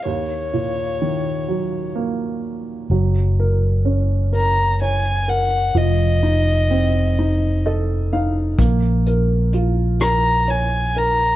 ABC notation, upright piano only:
X:1
M:6/8
L:1/8
Q:3/8=42
K:Gblyd
V:1 name="Upright piano"
E,, B,, E, G, B,2 | G, B D B d B | F, E C E [=Ae] [Ef] | B, B F B d B |]